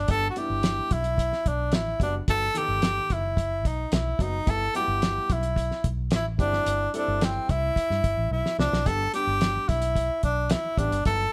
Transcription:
0.00 0.12 D4 loud
0.08 0.29 G1 medium
0.08 0.25 G3 medium
0.08 0.25 B3 medium
0.08 0.26 D4 medium
0.08 0.26 G4 medium
0.08 0.29 A4 loud
0.08 kick loud
0.08 closed hi-hat medium
0.30 0.40 F#4 medium
0.36 1.02 G3 medium
0.36 1.02 B3 medium
0.36 1.02 D4 medium
0.36 1.02 E4 medium
0.36 0.94 G4 loud
0.36 closed hi-hat medium
0.50 0.80 G1 medium
0.63 snare medium
0.63 closed hi-hat medium
0.91 1.31 B1 medium
0.91 1.50 E4 loud
0.91 kick medium
0.91 closed hi-hat medium
1.04 closed hi-hat medium
1.18 kick medium
1.18 closed hi-hat medium
1.33 snare soft
1.46 1.73 B1 medium
1.46 1.77 D4 medium
1.46 kick medium
1.46 closed hi-hat medium
1.72 1.93 A1 medium
1.72 2.02 E4 medium
1.72 snare loud
1.72 closed hi-hat medium
2.00 2.20 F#1 medium
2.00 2.17 G3 medium
2.00 2.17 B3 medium
2.00 2.17 D4 medium
2.00 2.15 D4 medium
2.00 2.17 F#4 medium
2.00 kick medium
2.00 closed hi-hat medium
2.28 2.48 G1 medium
2.28 2.44 F#3 medium
2.28 2.44 B3 medium
2.28 2.45 D#4 medium
2.28 2.45 F#4 medium
2.28 2.59 A4 loud
2.28 kick loud
2.28 closed hi-hat loud
2.54 3.21 D#3 medium
2.54 3.21 B3 medium
2.54 3.21 D#4 medium
2.54 3.14 G4 loud
2.54 3.21 A4 medium
2.54 closed hi-hat medium
2.68 2.98 G1 medium
2.82 snare loud
2.82 closed hi-hat medium
3.10 3.65 F#1 medium
3.10 3.69 E4 medium
3.10 kick medium
3.10 closed hi-hat medium
3.37 kick medium
3.37 closed hi-hat medium
3.65 3.85 B1 medium
3.65 3.94 D#4 medium
3.65 kick medium
3.65 closed hi-hat medium
3.92 4.12 B1 medium
3.92 4.23 E4 medium
3.92 snare loud
3.92 closed hi-hat medium
4.19 4.39 F#1 loud
4.19 4.36 F#3 medium
4.19 4.36 B3 medium
4.19 4.36 D#4 medium
4.19 4.52 D#4 loud
4.19 4.36 F#4 medium
4.19 kick loud
4.19 closed hi-hat medium
4.46 4.67 G1 loud
4.46 4.63 G3 medium
4.46 4.63 B3 medium
4.46 4.64 E4 medium
4.46 4.64 G4 medium
4.46 kick loud
4.46 closed hi-hat medium
4.50 4.76 A4 loud
4.74 4.81 F#3 medium
4.74 5.40 B3 medium
4.74 5.41 E4 medium
4.74 5.34 G4 loud
4.74 5.41 F#5 medium
4.74 closed hi-hat medium
4.80 5.43 G3 medium
4.88 5.18 G1 medium
5.02 snare loud
5.02 closed hi-hat medium
5.30 5.70 B1 loud
5.30 5.86 E4 medium
5.30 kick medium
5.30 closed hi-hat medium
5.43 closed hi-hat medium
5.56 kick medium
5.56 closed hi-hat medium
5.71 snare soft
5.84 6.11 B1 medium
5.84 kick medium
5.84 closed hi-hat medium
6.11 6.41 A1 medium
6.11 snare loud
6.11 closed hi-hat medium
6.15 6.26 E4 medium
6.38 6.59 G1 loud
6.38 6.83 G3 medium
6.38 6.83 C4 medium
6.38 6.91 D4 loud
6.38 6.83 E4 medium
6.38 6.83 G4 medium
6.38 kick loud
6.38 closed hi-hat medium
6.53 snare soft
6.66 6.86 G1 medium
6.66 closed hi-hat medium
6.94 7.60 G3 medium
6.94 7.60 C4 medium
6.94 7.26 D4 medium
6.94 7.60 E4 medium
6.94 7.60 A4 medium
6.94 closed hi-hat medium
7.08 7.38 G1 medium
7.21 7.52 C4 medium
7.21 snare loud
7.21 closed hi-hat medium
7.49 7.69 C2 loud
7.49 8.32 E4 loud
7.49 kick medium
7.49 closed hi-hat medium
7.76 kick medium
7.76 closed hi-hat medium
7.90 8.00 G2 medium
7.90 snare soft
8.04 8.14 G1 medium
8.04 kick medium
8.04 closed hi-hat medium
8.17 8.27 A1 medium
8.31 8.41 B1 medium
8.31 8.57 E4 medium
8.46 snare medium
8.58 8.69 C2 medium
8.58 8.75 G3 medium
8.58 8.75 C4 medium
8.58 8.89 D4 loud
8.58 8.75 E4 medium
8.58 8.76 G4 medium
8.58 snare loud
8.73 8.88 B1 medium
8.73 snare medium
8.86 9.06 G1 loud
8.86 9.03 G3 medium
8.86 9.03 B3 medium
8.86 9.03 D4 medium
8.86 9.03 G4 medium
8.86 9.14 A4 loud
8.86 kick loud
8.86 closed hi-hat medium
9.13 9.80 G3 medium
9.13 9.80 B3 medium
9.13 9.80 D4 medium
9.13 9.70 G4 loud
9.13 9.80 G4 medium
9.13 closed hi-hat medium
9.27 9.57 G1 medium
9.41 snare medium
9.41 closed hi-hat medium
9.68 10.09 B1 medium
9.68 10.23 E4 loud
9.68 kick medium
9.68 closed hi-hat medium
9.82 closed hi-hat medium
9.96 kick medium
9.96 closed hi-hat medium
10.23 10.53 B1 medium
10.23 10.54 D4 medium
10.23 kick medium
10.23 closed hi-hat medium
10.50 10.80 E4 loud
10.50 snare loud
10.50 closed hi-hat medium
10.77 10.88 A1 medium
10.77 10.95 G3 medium
10.77 10.95 B3 medium
10.77 11.06 D4 loud
10.77 10.95 D4 medium
10.77 10.96 G4 medium
10.77 kick loud
10.77 closed hi-hat medium
10.91 11.01 G1 medium
10.91 closed hi-hat medium
11.05 11.26 G1 loud
11.05 11.22 F#3 medium
11.05 11.22 B3 medium
11.05 11.23 D#4 medium
11.05 11.23 F#4 medium
11.05 11.33 A4 loud
11.05 kick loud
11.05 closed hi-hat medium

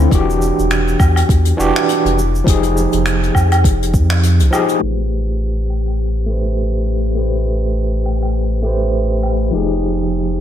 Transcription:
0.00 0.13 D3 loud
0.00 0.13 C4 medium
0.00 0.13 E4 medium
0.00 0.13 F4 loud
0.09 0.51 E1 loud
0.09 1.54 E3 medium
0.09 1.55 D4 medium
0.09 1.56 F#4 medium
0.09 kick loud
0.09 closed hi-hat medium
0.09 shaker medium
0.15 1.57 G4 medium
0.30 shaker soft
0.42 shaker medium
0.59 0.95 E1 loud
0.59 shaker soft
0.70 finger snap medium
0.70 closed hi-hat medium
0.70 shaker medium
0.88 shaker soft
1.00 1.23 E2 medium
1.00 kick loud
1.00 low woodblock medium
1.00 shaker medium
1.16 closed hi-hat medium
1.16 low woodblock medium
1.16 shaker soft
1.29 1.52 E2 medium
1.29 kick loud
1.29 closed hi-hat medium
1.29 shaker medium
1.45 closed hi-hat medium
1.45 shaker soft
1.57 1.71 E1 medium
1.57 2.15 E3 loud
1.57 2.16 D4 medium
1.57 2.16 F#4 medium
1.57 2.17 G4 loud
1.57 shaker medium
1.76 finger snap medium
1.76 shaker medium
1.89 closed hi-hat medium
1.89 shaker medium
2.05 2.42 F1 medium
2.05 closed hi-hat soft
2.05 shaker soft
2.19 shaker medium
2.35 shaker soft
2.44 2.86 F1 loud
2.44 3.90 F3 medium
2.44 3.90 D#4 medium
2.44 3.91 G4 medium
2.44 kick loud
2.44 closed hi-hat medium
2.49 3.92 G#4 medium
2.49 shaker medium
2.63 closed hi-hat soft
2.63 shaker soft
2.77 shaker medium
2.93 3.30 F1 loud
2.93 closed hi-hat soft
2.93 shaker medium
3.06 finger snap medium
3.06 closed hi-hat medium
3.06 shaker medium
3.23 closed hi-hat soft
3.23 shaker soft
3.35 3.66 F2 medium
3.35 kick medium
3.35 low woodblock medium
3.35 shaker medium
3.52 closed hi-hat medium
3.52 low woodblock medium
3.52 shaker soft
3.64 3.95 F1 medium
3.64 kick loud
3.64 closed hi-hat medium
3.64 shaker medium
3.82 closed hi-hat medium
3.82 shaker soft
3.94 4.41 F2 loud
3.94 kick loud
3.94 shaker medium
4.10 finger snap medium
4.10 closed hi-hat medium
4.10 shaker medium
4.23 closed hi-hat medium
4.23 shaker medium
4.40 4.49 C2 medium
4.40 closed hi-hat medium
4.40 shaker soft
4.51 4.78 F3 medium
4.51 4.79 D#4 medium
4.51 4.79 G4 medium
4.51 4.80 G#4 medium
4.51 low woodblock medium
4.51 shaker medium
4.69 closed hi-hat soft
4.69 shaker soft
4.79 9.50 A1 medium
4.79 6.25 A3 medium
4.79 6.26 G4 medium
5.70 low woodblock medium
5.87 low woodblock medium
6.26 7.13 A3 medium
6.26 7.14 G4 medium
6.26 7.15 B4 medium
6.32 7.16 C5 medium
7.15 8.60 A3 medium
7.15 8.61 G4 medium
7.15 8.62 B4 medium
7.21 8.63 C5 medium
8.06 low woodblock medium
8.22 low woodblock medium
8.63 9.49 A3 medium
8.63 9.50 G4 medium
8.63 9.51 B4 medium
8.68 9.52 C5 medium
9.23 low woodblock medium
9.51 10.40 F1 medium
9.51 10.40 F3 medium
9.51 10.40 D#4 medium
9.51 10.40 G4 medium
9.57 10.40 G#4 medium

